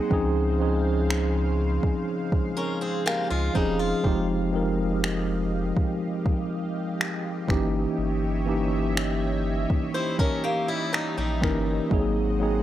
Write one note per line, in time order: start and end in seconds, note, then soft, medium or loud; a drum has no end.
0.00 0.13 F#3 medium
0.00 7.45 G#3 medium
0.00 0.12 A#3 medium
0.00 0.10 C4 medium
0.00 0.12 D#4 medium
0.00 0.12 G#4 medium
0.00 4.00 C5 medium
0.10 1.79 C#2 loud
0.10 4.00 C#3 medium
0.10 0.47 F3 medium
0.10 0.47 C4 medium
0.10 0.48 C#4 medium
0.10 0.48 D#4 medium
0.10 0.49 G#4 medium
0.10 7.45 F5 medium
0.10 kick loud
0.59 2.06 F3 medium
0.59 2.07 C4 medium
0.59 2.07 C#4 medium
0.59 2.08 D#4 medium
0.59 2.08 G#4 medium
1.10 finger snap loud
1.83 kick medium
2.32 kick medium
2.57 2.80 C#4 medium
2.57 2.80 A#4 medium
2.81 3.05 C4 medium
2.81 3.05 G#4 medium
3.06 3.30 A#3 medium
3.06 3.29 G4 medium
3.06 finger snap loud
3.30 3.50 C#2 medium
3.30 3.54 G#3 medium
3.30 3.54 F4 medium
3.54 3.93 E1 loud
3.54 3.91 F3 medium
3.54 3.79 G3 medium
3.54 3.92 C4 medium
3.54 3.92 C#4 medium
3.54 3.78 D#4 medium
3.54 3.93 D#4 medium
3.54 3.93 G#4 medium
3.54 kick medium
3.79 4.27 G#3 medium
3.79 4.26 F4 medium
4.03 5.73 F1 loud
4.03 4.40 F3 medium
4.03 4.41 G#3 medium
4.03 4.41 C4 medium
4.03 4.42 D#4 medium
4.03 11.87 G4 medium
4.03 4.42 G4 medium
4.03 12.63 D#5 medium
4.03 kick loud
4.52 6.00 F3 medium
4.52 6.00 G#3 medium
4.52 6.01 C4 medium
4.52 6.01 D#4 medium
4.52 6.01 A#4 medium
5.04 finger snap loud
5.77 kick medium
6.26 kick loud
7.01 finger snap loud
7.48 7.86 G1 loud
7.48 8.27 E3 medium
7.48 8.27 A#3 medium
7.48 8.28 C#4 medium
7.48 8.28 D#4 medium
7.48 8.28 G4 medium
7.48 11.87 C#5 medium
7.48 11.87 E5 medium
7.48 finger snap medium
7.48 kick loud
7.98 9.66 G1 loud
8.46 9.93 E3 medium
8.46 9.94 A#3 medium
8.46 9.94 C#4 medium
8.46 9.94 D#4 medium
8.46 9.95 G4 medium
8.97 finger snap loud
9.70 kick medium
9.94 10.18 E4 medium
9.94 10.18 C5 medium
10.19 10.43 C#4 medium
10.19 10.42 A#4 medium
10.19 kick loud
10.44 10.67 A#3 medium
10.44 10.67 G4 medium
10.68 10.92 G3 medium
10.68 10.92 E4 medium
10.93 11.16 G3 medium
10.93 11.16 D#4 medium
10.93 finger snap loud
11.17 11.44 A#1 medium
11.17 11.88 G3 medium
11.17 11.88 D#4 medium
11.41 11.80 G1 loud
11.41 11.78 E3 medium
11.41 11.79 A#3 medium
11.41 11.79 C#4 medium
11.41 11.79 D#4 medium
11.41 11.80 A#4 medium
11.41 finger snap medium
11.41 kick medium
11.90 12.63 G#1 loud
11.90 12.27 F#3 medium
11.90 12.63 G#3 medium
11.90 12.28 A#3 medium
11.90 12.28 C4 medium
11.90 12.29 D#4 medium
11.90 12.29 G#4 medium
11.90 12.63 C5 medium
11.90 12.63 F#5 medium
11.90 kick loud
12.39 12.63 F#3 medium
12.39 12.63 A#3 medium
12.39 12.63 C4 medium
12.39 12.63 D#4 medium
12.39 12.63 G#4 medium